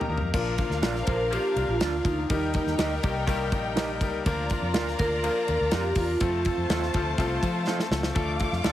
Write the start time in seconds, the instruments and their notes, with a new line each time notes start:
Already playing: horn section A#2 D#3 G3 D#4, violin section A#4 A#5
0.01 floor tom
0.08 fingered electric bass D#2, grand piano A#3 D#4 G4 A#4
0.18 fingered electric bass F2, floor tom
0.33 fingered electric bass A#1, grand piano F3 A#3 D4 F4 A#4, violin section D4 A#4 F5, kick, crash
0.58 grand piano F3 A#3 D4 F4 A#4, kick, ride
0.69 fingered electric bass D2, snare
0.82 fingered electric bass A#1, grand piano F3 A#3 D4 F4 A#4, clean electric guitar D4 F4 A#4 D5, snare, ride
0.95 snare
1.03 horn section D3 F3 A#3 F4, vibraphone C5, ride
1.07 fingered electric bass A#1, grand piano F3 A#3 D4 F4 A#4, vibraphone A#4, kick
1.30 horn section D3 F3 A#3 F4, grand piano F3 A#3 D4 F4 A#4, vibraphone G4, ride
1.56 fingered electric bass C2, grand piano F3 A#3 D4 F4 A#4, ride
1.68 fingered electric bass A#1, vibraphone F4
1.81 fingered electric bass D2, grand piano F3 A#3 D4 F4 A#4, clean electric guitar D4 F4 A#4 D5, snare, ride
2.05 fingered electric bass D2, grand piano F3 A#3 D4 F4 A#4, vibraphone D#4, kick, ride
2.29 fingered electric bass D#2, grand piano G3 A#3 D#4 G4 A#4, violin section D#4 A#4 G5, kick, ride
2.54 grand piano G3 A#3 D#4 G4 A#4, kick, ride
2.66 fingered electric bass D#2, snare
2.78 fingered electric bass D2, grand piano G3 A#3 D#4 G4 A#4, clean electric guitar D#4 G4 A#4 D#5, snare, ride
3.02 fingered electric bass C2, horn section D#3 G3 A#3 G4, grand piano G3 A#3 D#4 G4 A#4, kick, ride
3.27 horn section D#3 G3 A#3 G4, grand piano G3 A#3 D#4 G4 A#4, kick, ride
3.52 fingered electric bass A#1, grand piano G3 A#3 D#4 G4 A#4, kick, ride
3.76 grand piano G3 A#3 D#4 G4 A#4, clean electric guitar D#4 G4 A#4 D#5, snare, ride
4.01 fingered electric bass C#2, grand piano G3 A#3 D#4 G4 A#4, kick, ride
4.25 fingered electric bass D2, grand piano F3 A#3 D4 F4 A#4, violin section F4 D5 A#5, kick, ride
4.50 grand piano F3 A#3 D4 F4 A#4, kick, ride
4.62 fingered electric bass F2
4.74 fingered electric bass D2, grand piano F3 A#3 D4 F4 A#4, clean electric guitar F4 A#4 D5 F5, snare, ride
4.88 snare
4.99 fingered electric bass D2, horn section D3 F3 A#3 F4, grand piano F3 A#3 D4 F4 A#4, vibraphone A#4, kick, ride
5.23 horn section D3 F3 A#3 F4, grand piano F3 A#3 D4 F4 A#4, ride
5.48 fingered electric bass D#2, grand piano F3 A#3 D4 F4 A#4, ride
5.61 fingered electric bass D2
5.71 fingered electric bass F2, grand piano F3 A#3 D4 F4 A#4, clean electric guitar F4 A#4 D5 F5, vibraphone G4, snare, ride
5.95 fingered electric bass E2, grand piano F3 A#3 D4 F4 A#4, vibraphone F4, kick, open hi-hat, ride
6.20 fingered electric bass F2, grand piano F3 A3 C4 F4 A4, violin section F4 C5 A5, kick, hi-hat pedal, ride
6.45 grand piano F3 A3 C4 F4 A4, kick, ride
6.57 fingered electric bass F2
6.69 fingered electric bass D#2, grand piano F3 A3 C4 F4 A4, clean electric guitar F4 A4 C5 F5, snare, ride
6.83 snare
6.93 fingered electric bass D2, horn section C3 F3 A3 F4, grand piano F3 A3 C4 F4 A4, kick, ride
7.18 fingered electric bass C2, horn section C3 F3 A3 F4, grand piano F3 A3 C4 F4 A4, kick, ride
7.43 fingered electric bass F3, grand piano F3 A3 C4 F4 A4, kick, ride
7.67 grand piano F3 A3 C4 F4 A4, clean electric guitar F4 A4 C5 F5, snare
7.79 snare
7.91 fingered electric bass C#2, grand piano F3 A3 C4 F4 A4, snare
8.03 snare
8.15 fingered electric bass D2, grand piano F3 A3 D4 F4 A4, violin section A4 F5 D6, kick, ride
8.40 grand piano F3 A3 D4 F4 A4, kick, ride
8.52 fingered electric bass F2, snare
8.64 fingered electric bass D2, grand piano F3 A3 D4 F4 A4, clean electric guitar F4 A4 D5 F5, snare, ride